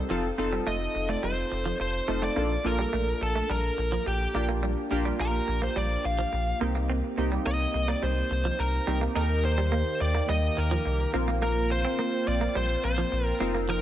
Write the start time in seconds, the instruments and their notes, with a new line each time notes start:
Already playing: synth keys C4 D#4 G4 A4 A#4
0.09 sub bass F1, clean electric guitar F3, synth keys C4 D#4 F4 A4
0.38 sub bass F1, synth keys C4 D#4 F4 A4, muted clean electric guitar stroke
0.53 clean electric guitar G3
0.67 sub bass F1, clean electric guitar A3, lead electric guitar D#5
0.95 sub bass F1, muted clean electric guitar stroke
1.09 clean electric guitar A3, lead electric guitar D5
1.23 sub bass F1, clean electric guitar G3, lead electric guitar C5
1.52 sub bass F1, muted clean electric guitar stroke
1.66 clean electric guitar F3
1.80 sub bass F1, lead electric guitar C5, muted clean electric guitar stroke
2.08 sub bass F1, clean electric guitar A3, synth keys C4 D#4 F4 A4
2.22 clean electric guitar A3, lead electric guitar D5
2.36 sub bass A#1, synth keys A#3 D4 F4 A4, clean electric guitar A#3
2.64 sub bass A#1, synth keys A#3 D4 F4 A4, lead electric guitar A#4, muted clean electric guitar stroke
2.72 synth keys A#4
2.79 clean electric guitar G3
2.93 sub bass A#1, clean electric guitar A3
3.21 sub bass A#1, lead electric guitar A4, muted clean electric guitar stroke
3.36 clean electric guitar A3
3.50 sub bass A#1, clean electric guitar G3, lead electric guitar A#4
3.78 sub bass A#1, muted clean electric guitar stroke
3.92 clean electric guitar F3
4.06 sub bass A#1, lead electric guitar G4, muted clean electric guitar stroke
4.34 sub bass A#1, synth keys A#3 D4 F4 G4, clean electric guitar A#3
4.49 clean electric guitar A#3
4.63 clean electric guitar G3
4.90 sub bass A#1, synth keys A#3 D4 F4 G4, muted clean electric guitar stroke
5.05 clean electric guitar G3
5.20 sub bass A#1, clean electric guitar A#3, lead electric guitar A#4
5.48 sub bass A#1, muted clean electric guitar stroke
5.62 clean electric guitar A#3, lead electric guitar C5
5.76 sub bass A#1, clean electric guitar G3, lead electric guitar D5
6.05 sub bass A#1, lead electric guitar F5, muted clean electric guitar stroke
6.19 clean electric guitar F3
6.33 sub bass A#1, muted clean electric guitar stroke
6.60 sub bass C2, synth keys A#3 C4 D#4 G4, clean electric guitar A#3
6.75 clean electric guitar A#3
6.90 clean electric guitar C4
7.17 sub bass C2, synth keys A#3 C4 D#4 G4, muted clean electric guitar stroke
7.32 clean electric guitar G3
7.46 sub bass C2, clean electric guitar A#3, lead electric guitar D#5
7.74 sub bass C2, muted clean electric guitar stroke
7.88 clean electric guitar A#3, lead electric guitar D5
8.02 sub bass C2, clean electric guitar G3, lead electric guitar C5
8.31 sub bass C2, muted clean electric guitar stroke
8.45 clean electric guitar F3
8.59 sub bass C2, lead electric guitar A#4, muted clean electric guitar stroke
8.87 sub bass C2, clean electric guitar G3, synth keys A#3 C4 D#4 G4
9.01 clean electric guitar A#3
9.15 sub bass D#2, analog synth pad D#3 A#3 G4, synth keys A#3 D#4 G4 A4, clean electric guitar D#4, lead electric guitar A#4
9.23 synth keys A#4
9.44 lead electric guitar C5, muted clean electric guitar stroke
9.58 clean electric guitar G3
9.72 clean electric guitar A#3
10.00 sub bass D#2, lead electric guitar D5, muted clean electric guitar stroke
10.15 clean electric guitar A#3
10.29 sub bass D#2, clean electric guitar G3, lead electric guitar D#5
10.57 sub bass D#2, lead electric guitar A#4, muted clean electric guitar stroke
10.71 clean electric guitar F3
10.85 sub bass C2, muted clean electric guitar stroke
11.13 sub bass A#1, synth keys A#3 C4 F4 A#4, clean electric guitar A#3, analog synth pad C4 F4
11.28 clean electric guitar A#3
11.42 clean electric guitar A#3, lead electric guitar A#4
11.70 lead electric guitar C5, muted clean electric guitar stroke
11.85 clean electric guitar C4
11.99 clean electric guitar A#3
12.27 sub bass A#1, lead electric guitar D5, muted clean electric guitar stroke
12.41 clean electric guitar A#3
12.55 sub bass A#1, clean electric guitar G3, lead electric guitar C5
12.84 sub bass A#1, lead electric guitar C5, muted clean electric guitar stroke
12.98 clean electric guitar F3
13.12 sub bass A#1, muted clean electric guitar stroke
13.26 lead electric guitar A#4
13.40 sub bass F1, analog synth pad F3 D#4 A#4, clean electric guitar A#3, synth keys C4 D#4 F4 A#4
13.55 clean electric guitar A#3
13.69 clean electric guitar F3, lead electric guitar A#4